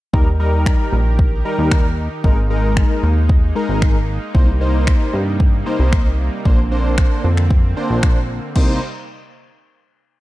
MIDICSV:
0, 0, Header, 1, 5, 480
1, 0, Start_track
1, 0, Key_signature, -3, "minor"
1, 0, Tempo, 526316
1, 124, Time_signature, 4, 2, 24, 8
1, 9303, End_track
2, 0, Start_track
2, 0, Title_t, "Analog polysynth"
2, 0, Program_c, 0, 90
2, 121, Note_on_c, 0, 55, 86
2, 124, Note_on_c, 0, 63, 77
2, 126, Note_on_c, 0, 70, 92
2, 247, Note_off_c, 0, 55, 0
2, 249, Note_off_c, 0, 63, 0
2, 250, Note_off_c, 0, 70, 0
2, 359, Note_on_c, 0, 55, 76
2, 362, Note_on_c, 0, 63, 72
2, 364, Note_on_c, 0, 70, 83
2, 861, Note_off_c, 0, 55, 0
2, 862, Note_off_c, 0, 63, 0
2, 863, Note_off_c, 0, 70, 0
2, 1322, Note_on_c, 0, 55, 88
2, 1323, Note_on_c, 0, 63, 76
2, 1325, Note_on_c, 0, 70, 94
2, 1697, Note_off_c, 0, 55, 0
2, 1698, Note_off_c, 0, 63, 0
2, 1699, Note_off_c, 0, 70, 0
2, 2042, Note_on_c, 0, 56, 84
2, 2044, Note_on_c, 0, 63, 80
2, 2045, Note_on_c, 0, 70, 97
2, 2168, Note_off_c, 0, 56, 0
2, 2169, Note_off_c, 0, 63, 0
2, 2170, Note_off_c, 0, 70, 0
2, 2281, Note_on_c, 0, 56, 76
2, 2283, Note_on_c, 0, 63, 69
2, 2286, Note_on_c, 0, 70, 85
2, 2781, Note_off_c, 0, 56, 0
2, 2782, Note_off_c, 0, 63, 0
2, 2784, Note_off_c, 0, 70, 0
2, 3240, Note_on_c, 0, 56, 88
2, 3243, Note_on_c, 0, 63, 78
2, 3247, Note_on_c, 0, 70, 97
2, 3616, Note_off_c, 0, 56, 0
2, 3618, Note_off_c, 0, 63, 0
2, 3620, Note_off_c, 0, 70, 0
2, 3961, Note_on_c, 0, 58, 81
2, 3963, Note_on_c, 0, 63, 77
2, 3964, Note_on_c, 0, 72, 94
2, 4087, Note_off_c, 0, 58, 0
2, 4088, Note_off_c, 0, 63, 0
2, 4089, Note_off_c, 0, 72, 0
2, 4200, Note_on_c, 0, 58, 77
2, 4203, Note_on_c, 0, 63, 72
2, 4205, Note_on_c, 0, 72, 80
2, 4701, Note_off_c, 0, 58, 0
2, 4703, Note_off_c, 0, 63, 0
2, 4703, Note_off_c, 0, 72, 0
2, 5160, Note_on_c, 0, 58, 87
2, 5163, Note_on_c, 0, 63, 78
2, 5165, Note_on_c, 0, 72, 91
2, 5536, Note_off_c, 0, 58, 0
2, 5538, Note_off_c, 0, 63, 0
2, 5539, Note_off_c, 0, 72, 0
2, 5881, Note_on_c, 0, 58, 82
2, 5884, Note_on_c, 0, 62, 74
2, 5887, Note_on_c, 0, 72, 93
2, 6008, Note_off_c, 0, 58, 0
2, 6009, Note_off_c, 0, 62, 0
2, 6010, Note_off_c, 0, 72, 0
2, 6121, Note_on_c, 0, 58, 74
2, 6124, Note_on_c, 0, 62, 71
2, 6126, Note_on_c, 0, 72, 84
2, 6621, Note_off_c, 0, 58, 0
2, 6623, Note_off_c, 0, 62, 0
2, 6624, Note_off_c, 0, 72, 0
2, 7080, Note_on_c, 0, 58, 84
2, 7083, Note_on_c, 0, 62, 79
2, 7085, Note_on_c, 0, 72, 96
2, 7456, Note_off_c, 0, 58, 0
2, 7458, Note_off_c, 0, 62, 0
2, 7459, Note_off_c, 0, 72, 0
2, 7803, Note_on_c, 0, 72, 92
2, 7804, Note_on_c, 0, 58, 82
2, 7804, Note_on_c, 0, 63, 78
2, 8027, Note_off_c, 0, 63, 0
2, 8027, Note_off_c, 0, 72, 0
2, 8028, Note_off_c, 0, 58, 0
2, 9303, End_track
3, 0, Start_track
3, 0, Title_t, "Supersaw synth"
3, 0, Program_c, 1, 81
3, 125, Note_on_c, 1, 63, 73
3, 125, Note_on_c, 1, 67, 73
3, 125, Note_on_c, 1, 70, 86
3, 126, Note_on_c, 1, 51, 78
3, 2025, Note_off_c, 1, 67, 0
3, 2026, Note_off_c, 1, 51, 0
3, 2026, Note_off_c, 1, 70, 0
3, 2044, Note_on_c, 1, 58, 72
3, 2045, Note_on_c, 1, 56, 77
3, 3945, Note_off_c, 1, 56, 0
3, 3968, Note_on_c, 1, 55, 71
3, 3969, Note_on_c, 1, 48, 79
3, 5848, Note_off_c, 1, 63, 0
3, 5867, Note_off_c, 1, 48, 0
3, 5867, Note_off_c, 1, 55, 0
3, 5887, Note_on_c, 1, 60, 87
3, 5888, Note_on_c, 1, 50, 80
3, 7768, Note_off_c, 1, 58, 0
3, 7786, Note_off_c, 1, 60, 0
3, 7787, Note_off_c, 1, 50, 0
3, 7801, Note_on_c, 1, 58, 65
3, 7801, Note_on_c, 1, 63, 79
3, 7802, Note_on_c, 1, 48, 69
3, 7802, Note_on_c, 1, 55, 65
3, 8026, Note_off_c, 1, 48, 0
3, 8026, Note_off_c, 1, 55, 0
3, 8026, Note_off_c, 1, 58, 0
3, 8026, Note_off_c, 1, 63, 0
3, 9303, End_track
4, 0, Start_track
4, 0, Title_t, "Analog synth bass"
4, 0, Program_c, 2, 38
4, 124, Note_on_c, 2, 39, 93
4, 672, Note_off_c, 2, 39, 0
4, 845, Note_on_c, 2, 34, 91
4, 1301, Note_off_c, 2, 34, 0
4, 1446, Note_on_c, 2, 39, 90
4, 1902, Note_off_c, 2, 39, 0
4, 2044, Note_on_c, 2, 32, 100
4, 2592, Note_off_c, 2, 32, 0
4, 2765, Note_on_c, 2, 39, 93
4, 3222, Note_off_c, 2, 39, 0
4, 3364, Note_on_c, 2, 32, 84
4, 3821, Note_off_c, 2, 32, 0
4, 3964, Note_on_c, 2, 36, 98
4, 4512, Note_off_c, 2, 36, 0
4, 4684, Note_on_c, 2, 43, 97
4, 5141, Note_off_c, 2, 43, 0
4, 5285, Note_on_c, 2, 36, 82
4, 5741, Note_off_c, 2, 36, 0
4, 5885, Note_on_c, 2, 34, 97
4, 6433, Note_off_c, 2, 34, 0
4, 6606, Note_on_c, 2, 41, 92
4, 7062, Note_off_c, 2, 41, 0
4, 7206, Note_on_c, 2, 34, 90
4, 7662, Note_off_c, 2, 34, 0
4, 7805, Note_on_c, 2, 36, 98
4, 8028, Note_off_c, 2, 36, 0
4, 9303, End_track
5, 0, Start_track
5, 0, Title_t, "Drums"
5, 124, Note_on_c, 9, 36, 102
5, 215, Note_off_c, 9, 36, 0
5, 604, Note_on_c, 9, 36, 104
5, 605, Note_on_c, 9, 26, 109
5, 695, Note_off_c, 9, 36, 0
5, 696, Note_off_c, 9, 26, 0
5, 1084, Note_on_c, 9, 36, 105
5, 1175, Note_off_c, 9, 36, 0
5, 1564, Note_on_c, 9, 26, 112
5, 1564, Note_on_c, 9, 36, 116
5, 1655, Note_off_c, 9, 26, 0
5, 1655, Note_off_c, 9, 36, 0
5, 2044, Note_on_c, 9, 36, 103
5, 2136, Note_off_c, 9, 36, 0
5, 2524, Note_on_c, 9, 36, 100
5, 2525, Note_on_c, 9, 26, 113
5, 2615, Note_off_c, 9, 36, 0
5, 2616, Note_off_c, 9, 26, 0
5, 3004, Note_on_c, 9, 36, 110
5, 3095, Note_off_c, 9, 36, 0
5, 3484, Note_on_c, 9, 36, 117
5, 3485, Note_on_c, 9, 26, 111
5, 3575, Note_off_c, 9, 36, 0
5, 3576, Note_off_c, 9, 26, 0
5, 3964, Note_on_c, 9, 36, 103
5, 4055, Note_off_c, 9, 36, 0
5, 4443, Note_on_c, 9, 26, 111
5, 4444, Note_on_c, 9, 36, 106
5, 4534, Note_off_c, 9, 26, 0
5, 4535, Note_off_c, 9, 36, 0
5, 4924, Note_on_c, 9, 36, 106
5, 5016, Note_off_c, 9, 36, 0
5, 5404, Note_on_c, 9, 36, 121
5, 5405, Note_on_c, 9, 26, 109
5, 5496, Note_off_c, 9, 26, 0
5, 5496, Note_off_c, 9, 36, 0
5, 5886, Note_on_c, 9, 36, 101
5, 5977, Note_off_c, 9, 36, 0
5, 6364, Note_on_c, 9, 26, 117
5, 6365, Note_on_c, 9, 36, 108
5, 6455, Note_off_c, 9, 26, 0
5, 6456, Note_off_c, 9, 36, 0
5, 6725, Note_on_c, 9, 26, 63
5, 6816, Note_off_c, 9, 26, 0
5, 6845, Note_on_c, 9, 36, 106
5, 6936, Note_off_c, 9, 36, 0
5, 7323, Note_on_c, 9, 26, 108
5, 7324, Note_on_c, 9, 36, 115
5, 7414, Note_off_c, 9, 26, 0
5, 7415, Note_off_c, 9, 36, 0
5, 7803, Note_on_c, 9, 49, 77
5, 7804, Note_on_c, 9, 36, 95
5, 7894, Note_off_c, 9, 49, 0
5, 7896, Note_off_c, 9, 36, 0
5, 9303, End_track
0, 0, End_of_file